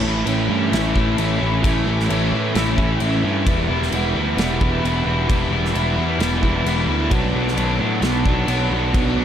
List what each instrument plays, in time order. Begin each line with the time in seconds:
Already playing: overdriven electric guitar A2 E3
0.02 picked electric bass A1, overdriven electric guitar A3 C#4 E4
0.25 picked electric bass A1, overdriven electric guitar A2 E3 A3 C#4 E4, crash
0.47 picked electric bass G2, overdriven electric guitar A3 C#4 E4
0.71 picked electric bass A1, overdriven electric guitar E3 A3 C#4 E4, snare, crash
0.93 picked electric bass A1, overdriven electric guitar A2 E3 A3 C#4 E4, kick
1.16 picked electric bass A1, overdriven electric guitar E3 A3 C#4 E4, crash
1.38 picked electric bass A1, overdriven electric guitar A3 C#4 E4
1.61 picked electric bass A1, overdriven electric guitar A2 E3 A3 C#4 E4, kick
1.65 crash
1.85 picked electric bass A1, overdriven electric guitar A3 C#4 E4
2.00 snare
2.08 picked electric bass A1, overdriven electric guitar A2 E3 A3 C#4 E4, crash
2.32 picked electric bass A2, overdriven electric guitar A3 C#4 E4
2.54 picked electric bass A1, overdriven electric guitar E3 A3 C#4 E4, snare, crash
2.76 picked electric bass A1, overdriven electric guitar A2 E3 A3 C#4 E4, kick
3.00 picked electric bass A1, overdriven electric guitar E3 A3 C#4 E4, crash
3.23 picked electric bass G2, overdriven electric guitar A3 C#4 E4
3.46 picked electric bass E1, overdriven electric guitar E3 G3 B3 E4, kick, crash
3.68 picked electric bass E1, overdriven electric guitar G3 B3 E4
3.82 snare
3.92 picked electric bass E1, overdriven electric guitar E3 G3 B3, crash
3.96 overdriven electric guitar E4
4.14 picked electric bass D2, overdriven electric guitar G3 B3 E4
4.37 picked electric bass E1, overdriven electric guitar E3 G3 B3 E4, snare, crash
4.60 picked electric bass E1, overdriven electric guitar E3 G3 B3 E4, kick
4.83 picked electric bass E1, overdriven electric guitar E3 G3 B3 E4, crash
5.05 picked electric bass E1, overdriven electric guitar G3 B3 E4
5.27 picked electric bass E1, overdriven electric guitar E3 G3 B3 E4, kick, crash
5.50 picked electric bass E1, overdriven electric guitar G3 B3 E4
5.65 snare
5.73 picked electric bass E1, overdriven electric guitar E3 G3 B3 E4, crash
5.96 picked electric bass E2, overdriven electric guitar G3 B3 E4
6.19 picked electric bass E1, overdriven electric guitar E3 G3 B3 E4, snare, crash
6.42 picked electric bass E1, overdriven electric guitar E3 G3 B3 E4, kick
6.64 picked electric bass E1, overdriven electric guitar E3 G3 B3 E4, crash
6.87 picked electric bass D2, overdriven electric guitar G3 B3 E4
7.10 picked electric bass B1, overdriven electric guitar B2 F#3 B3 D4, kick, crash
7.31 overdriven electric guitar F#3 B3 D4
7.35 picked electric bass B1
7.47 snare
7.53 picked electric bass B1, overdriven electric guitar B2 F#3 B3 D4, crash
7.79 picked electric bass A2, overdriven electric guitar F#3 B3 D4
8.01 picked electric bass B1, overdriven electric guitar B2 F#3 B3 D4, snare, crash
8.26 picked electric bass B1, overdriven electric guitar B2 F#3 B3 D4, kick
8.46 picked electric bass B1, overdriven electric guitar B2 F#3 B3 D4, crash
8.70 picked electric bass B1, overdriven electric guitar F#3 B3 D4
8.92 picked electric bass B1, overdriven electric guitar B2 F#3 B3 D4, kick, crash
9.16 picked electric bass B1, overdriven electric guitar F#3 B3 D4